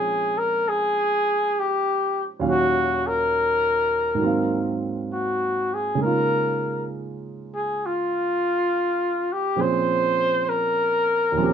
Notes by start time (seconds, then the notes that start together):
Already playing: A#2 F3 G#3 C4 C#4 D#4 G#4
0.38 A#4
0.69 G#4
1.60 G4
2.39 D#2 A#2 F#3 C#4 F5
2.49 F#4
3.07 A#4
4.15 G#2 D#3 F#3
4.22 A#3 C4
4.26 F5
5.13 F#4
5.74 G#4
5.95 C#3 G#3
6.01 A#3 D#4 A#4
6.06 F4
7.55 G#4
7.86 F4
9.32 G4
9.56 A#2 F3 C4 C#4 G#4
9.62 C5
10.49 A#4
11.32 D#2 A#2
11.37 F3 C4 C#4
11.43 G4